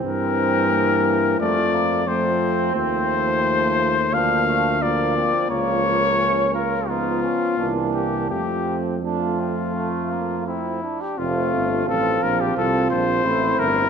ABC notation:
X:1
M:4/4
L:1/16
Q:1/4=87
K:F
V:1 name="Trumpet"
B8 d4 c4 | c8 f4 d4 | _d6 B2 F6 G2 | G3 z F8 E3 G |
F4 A2 B G A2 c4 B2 |]
V:2 name="Flugelhorn"
C8 A,2 B,2 C4- | C6 z2 D2 A,2 B,2 C2 | B,4 _D2 F2 _E2 D2 =D4 | C4 D2 C2 A,2 B,2 C2 D2 |
F12 E4 |]
V:3 name="French horn"
C4 B,4 A,4 A,4 | A,8 B,4 B,4 | B,6 z2 _C4 B,4 | A,4 A,8- A,2 z2 |
C4 C12 |]
V:4 name="Trombone" clef=bass
E,8 F,4 F,4 | F,8 F,4 F,4 | F,6 z2 F,4 E,4 | F,4 F,8- F,2 z2 |
A,4 F,4 F,4 A,4 |]
V:5 name="Tuba" clef=bass
G,,8 F,,8 | _E,,8 D,,8 | _D,,8- D,,2 z2 C,,4 | F,,12- F,,2 z2 |
F,,,2 G,,,2 A,,,2 B,,,2 C,,2 B,,,2 A,,,2 G,,,2 |]